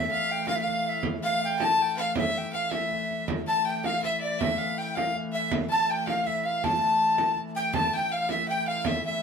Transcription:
Already playing: hurdy-gurdy A2 E3, recorder E5
0.11 fiddle F5
0.31 recorder G5
0.47 fiddle F5, recorder F5, frame drum
0.56 recorder E5
0.61 fiddle F5, recorder F5
0.67 frame drum
0.89 recorder E5
1.03 frame drum
1.23 fiddle F5, recorder F5
1.44 recorder G5
1.59 fiddle A5, frame drum
1.64 recorder A5
1.78 frame drum
1.82 recorder G5
1.97 fiddle F5, recorder F5
2.16 fiddle E5, recorder E5, frame drum
2.38 recorder G5
2.53 fiddle F5, recorder F5, frame drum
2.70 fiddle E5, recorder E5, frame drum
2.91 frame drum
3.10 frame drum
3.28 hurdy-gurdy A2 E3, frame drum
3.47 fiddle A5, recorder A5
3.65 fiddle G5, recorder G5
3.84 fiddle F5, recorder F5, frame drum
4.02 fiddle E5, recorder E5, frame drum
4.20 fiddle D5, recorder D5
4.39 fiddle E5, recorder E5, frame drum
4.58 fiddle F5
4.78 fiddle G5, recorder G5
4.95 fiddle F5, recorder F5, frame drum
5.15 frame drum
5.32 fiddle E5, recorder E5
5.51 frame drum
5.69 fiddle A5, recorder A5
5.89 fiddle G5, recorder G5
6.06 fiddle F5, recorder F5, frame drum
6.25 fiddle E5, recorder E5, frame drum
6.44 fiddle F5, recorder F5
6.64 recorder A5, fiddle A5, frame drum
6.82 frame drum
7.18 frame drum
7.37 frame drum
7.55 fiddle G5, recorder G5
7.74 hurdy-gurdy A2 E3, fiddle A5, recorder A5, frame drum
7.94 fiddle G5, recorder G5
8.12 fiddle F5, recorder F5
8.29 fiddle E5, recorder E5, frame drum
8.48 fiddle G5, recorder G5
8.68 fiddle F5, recorder F5
8.85 fiddle E5, recorder E5, frame drum
9.05 fiddle E5, recorder E5

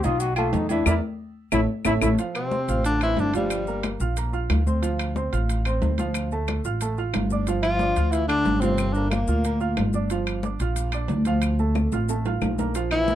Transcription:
0.04 upright bass B1, grand piano D#4 D#5 D#6, trombone F4, low agogo, maracas
0.20 trombone F#4, high conga, low agogo, maracas
0.36 grand piano A3 A4 A5, trombone F4, high conga, low agogo, claves, maracas
0.53 upright bass E2, trombone D#4, high conga, low timbale, maracas
0.69 grand piano E3 E4 E5, trombone D4, high conga, low agogo, maracas
0.86 upright bass E2, trombone E4, grand piano A#4 D5 E5, high conga, high timbale, claves, maracas
1.52 upright bass A1, trombone E4, grand piano A4 C#5 E5, high conga, high timbale, claves, maracas
1.85 upright bass A1, trombone E4, grand piano A4 C#5 E5, high conga, high timbale, claves, maracas
2.01 upright bass A1, trombone E4, grand piano A4 C#5 E5, high conga, high timbale, claves, maracas
2.18 grand piano F3 F4 F5, high conga, high timbale, maracas
2.35 trombone C3, tenor saxophone C4, high conga, high timbale, claves, maracas
2.51 grand piano C4 C5 C6, high conga, low timbale, maracas
2.68 upright bass A1, grand piano F4 F5 F6, high timbale, maracas
2.84 trombone D3, tenor saxophone D4, high conga, high timbale, maracas
3.01 trombone E3, grand piano C4 C5 C6, tenor saxophone E4, high conga, high timbale, claves, maracas
3.17 upright bass G1, trombone D3, tenor saxophone D4, high conga, low timbale, maracas
3.34 trombone G2, grand piano F3 F4 F5, tenor saxophone G3, high conga, high timbale, maracas
3.50 high conga, high timbale, claves, maracas
3.67 grand piano A#3 A#4 A#5, high conga, maracas
3.83 high conga, high timbale, low timbale, claves, maracas
4.00 upright bass A#1, grand piano F4 F5 F6, high conga, maracas
4.17 grand piano A#3 A#4 A#5, high conga, high timbale, maracas
4.33 grand piano F4 F5 F6, high conga, maracas
4.50 upright bass D2, high conga, high timbale, low timbale, claves, maracas
4.66 grand piano C4 C5 C6, high conga, maracas
4.82 grand piano F3 F4 F5, high timbale, maracas
4.99 high conga, high timbale, claves, maracas
5.16 grand piano C4 C5 C6, high conga, low timbale, maracas
5.32 upright bass A1, grand piano F4 F5 F6, high timbale, maracas
5.49 high conga, high timbale, maracas
5.65 grand piano C4 C5 C6, high conga, high timbale, claves, maracas
5.82 upright bass D2, high conga, low timbale, maracas
5.98 grand piano F3 F4 F5, high conga, high timbale, maracas
6.14 high conga, high timbale, claves, maracas
6.31 grand piano A3 A4 A5, high conga, maracas
6.48 high conga, high timbale, low timbale, claves, maracas
6.64 upright bass A1, grand piano F4 F5 F6, high conga, maracas
6.81 grand piano A3 A4 A5, high conga, high timbale, maracas
6.97 grand piano F4 F5 F6, high conga, maracas
7.14 upright bass G1, high conga, high timbale, low timbale, claves, maracas
7.30 grand piano D4 D5 D6, high conga, maracas
7.47 grand piano F3 F4 F5, high conga, high timbale, maracas
7.63 trombone F3, tenor saxophone F4, high conga, high timbale, claves, maracas
7.79 grand piano D4 D5 D6, high conga, low timbale, maracas
7.96 upright bass D2, grand piano F4 F5 F6, high timbale, maracas
8.11 trombone E3, tenor saxophone E4, high conga, high timbale, maracas
8.27 trombone D3, tenor saxophone D4, grand piano D4 D5 D6, high conga, high timbale, claves, maracas
8.45 upright bass G1, high conga, low timbale, maracas
8.60 trombone C3, grand piano F3 F4 F5, tenor saxophone C4, high conga, high timbale, maracas
8.78 high timbale, claves, maracas
8.93 trombone D3, grand piano A#3 A#4 A#5, tenor saxophone D4, high conga, maracas
9.10 trombone A#2, tenor saxophone A#3, high conga, high timbale, low timbale, claves, maracas
9.27 upright bass D2, grand piano F4 F5 F6, high conga, maracas
9.44 grand piano A#3 A#4 A#5, high conga, high timbale, maracas
9.60 grand piano F4 F5 F6, high conga, maracas
9.77 upright bass G1, high conga, high timbale, low timbale, claves, maracas
9.93 grand piano D4 D5 D6, high conga, maracas
10.10 grand piano F3 F4 F5, high conga, high timbale, maracas
10.27 high conga, high timbale, claves, maracas
10.43 grand piano D4 D5 D6, high conga, low timbale, maracas
10.59 upright bass A#1, grand piano F4 F5 F6, high timbale, maracas
10.76 high conga, high timbale, maracas
10.92 grand piano D4 D5 D6, high conga, high timbale, claves, maracas
11.08 upright bass D2, high conga, low timbale, maracas
11.25 grand piano F3 F4 F5, high conga, high timbale, maracas
11.42 high conga, high timbale, claves, maracas
11.59 grand piano A3 A4 A5, high conga, maracas
11.75 high conga, high timbale, claves, maracas
11.92 upright bass A1, grand piano F4 F5 F6, high conga, high timbale, maracas
12.09 grand piano A3 A4 A5, high conga, high timbale, maracas
12.25 grand piano F4 F5 F6, high conga, low timbale, maracas
12.41 upright bass A#1, high conga, low timbale, claves, maracas
12.58 grand piano A#3 A#4 A#5, high conga, low timbale, maracas
12.75 grand piano F3 F4 F5, high timbale, maracas
12.91 trombone E3, tenor saxophone E4, high conga, high timbale, claves, maracas
13.08 grand piano A#3 A#4 A#5, high conga, low timbale, maracas

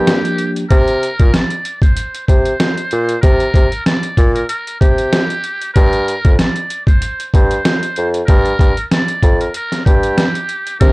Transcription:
Already playing: bassoon G2, tine electric piano F3 A#3 D4 G4, string section G3 D4 G4 A#4, muted trumpet G4
0.07 snare, closed hi-hat
0.25 closed hi-hat
0.38 closed hi-hat
0.56 closed hi-hat
0.70 bassoon C3, muted trumpet A#4, kick, closed hi-hat
0.88 closed hi-hat
1.03 closed hi-hat
1.19 bassoon A#2, kick, closed hi-hat
1.34 muted trumpet D5, snare, closed hi-hat
1.50 closed hi-hat
1.65 closed hi-hat
1.82 muted trumpet C5, kick, closed hi-hat
1.97 closed hi-hat
2.15 closed hi-hat
2.27 bassoon C3, muted trumpet C5, kick, closed hi-hat
2.45 closed hi-hat
2.60 snare, closed hi-hat
2.77 closed hi-hat
2.91 bassoon A#2, closed hi-hat
3.09 closed hi-hat
3.21 bassoon C3, muted trumpet A#4, kick, closed hi-hat
3.40 closed hi-hat
3.54 bassoon C3, kick, closed hi-hat
3.72 closed hi-hat
3.86 muted trumpet D5, snare, closed hi-hat
4.03 closed hi-hat
4.17 bassoon A#2, kick, closed hi-hat
4.35 muted trumpet A#4, closed hi-hat
4.49 muted trumpet A#4, closed hi-hat
4.67 closed hi-hat
4.81 bassoon C3, muted trumpet G4, kick, closed hi-hat
4.98 closed hi-hat
5.13 snare, closed hi-hat
5.30 closed hi-hat
5.44 closed hi-hat
5.62 closed hi-hat
5.74 bassoon G2, muted trumpet A#4, kick, closed hi-hat
5.93 closed hi-hat
6.08 closed hi-hat
6.25 bassoon F2, kick, closed hi-hat
6.39 muted trumpet D5, snare, closed hi-hat
6.56 closed hi-hat
6.70 closed hi-hat
6.86 muted trumpet C5, kick, closed hi-hat
7.02 closed hi-hat
7.20 closed hi-hat
7.34 bassoon G2, muted trumpet C5, kick, closed hi-hat
7.51 closed hi-hat
7.65 snare, closed hi-hat
7.83 closed hi-hat
7.96 bassoon F2, closed hi-hat
8.14 closed hi-hat
8.26 bassoon G2, muted trumpet A#4, kick, closed hi-hat
8.45 closed hi-hat
8.59 bassoon G2, kick, closed hi-hat
8.77 closed hi-hat
8.91 muted trumpet D5, snare, closed hi-hat
9.08 closed hi-hat
9.23 bassoon F2, kick, closed hi-hat
9.41 muted trumpet A#4, closed hi-hat
9.54 muted trumpet A#4, closed hi-hat
9.72 snare, closed hi-hat
9.85 bassoon G2, muted trumpet G4, kick, closed hi-hat
10.03 closed hi-hat
10.18 snare, closed hi-hat
10.35 closed hi-hat
10.49 closed hi-hat
10.67 closed hi-hat
10.80 string section C3 D#3 A#3 D4, bassoon C3, tine electric piano D#3 C4 D4 A#4, muted trumpet A#4, kick, closed hi-hat

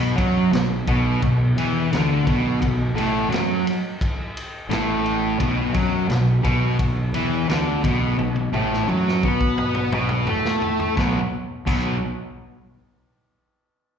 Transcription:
Already playing: fingered electric bass B1, distorted electric guitar B2
0.17 fingered electric bass F#2, distorted electric guitar F#3, kick, ride
0.53 fingered electric bass B1, distorted electric guitar B2, snare, ride
0.87 fingered electric bass B1, distorted electric guitar B2, kick, ride
1.22 fingered electric bass B1, distorted electric guitar B2, kick, ride
1.56 fingered electric bass E2, distorted electric guitar E3, ride
1.92 fingered electric bass D2, distorted electric guitar D3, snare, ride
2.27 fingered electric bass B1, distorted electric guitar B2, kick, ride
2.62 fingered electric bass B1, distorted electric guitar B2, kick, ride
2.94 fingered electric bass A1, distorted electric guitar A2, ride
3.28 fingered electric bass F#2, distorted electric guitar F#3
3.32 snare, ride
3.67 ride
4.01 kick, ride
4.37 ride
4.69 fingered electric bass A1, distorted electric guitar A2, snare, ride
5.06 ride
5.39 fingered electric bass B1, distorted electric guitar B2, kick, ride
5.74 fingered electric bass F#2, distorted electric guitar F#3, kick, ride
6.08 fingered electric bass B1, distorted electric guitar B2, snare, ride
6.43 fingered electric bass B1, distorted electric guitar B2, kick, ride
6.79 fingered electric bass B1, distorted electric guitar B2, kick, ride
7.13 fingered electric bass E2, distorted electric guitar E3, ride
7.49 fingered electric bass D2, distorted electric guitar D3, snare, ride
7.84 fingered electric bass B1, distorted electric guitar B2, kick, ride
8.18 fingered electric bass B1, distorted electric guitar B2, high tom
8.36 high tom
8.53 fingered electric bass A1, distorted electric guitar A2, high tom
8.73 snare
8.87 fingered electric bass F#2, distorted electric guitar F#3, mid tom
9.08 snare
9.23 fingered electric bass B2, distorted electric guitar B3, kick
9.41 kick
9.58 mid tom
9.75 mid tom
9.89 fingered electric bass B1, distorted electric guitar B2, mid tom
10.09 mid tom
10.26 fingered electric bass A2, distorted electric guitar A3, floor tom
10.45 snare
10.62 floor tom
10.79 floor tom
10.96 fingered electric bass B1, distorted electric guitar B2 F#3 B3, kick, snare
11.66 fingered electric bass B1, distorted electric guitar B2 F#3 B3, kick, crash

